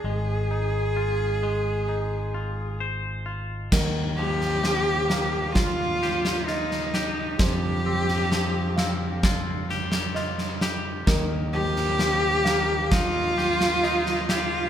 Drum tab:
CC |----------------|x---------------|----------------|----------------|
SD |----------------|o--oo-o-o-ooooo-|o--oo-o-o-ooooo-|o--oo-o-o-ooooo-|
BD |----------------|o-------o-------|o-------o-------|o-------o-------|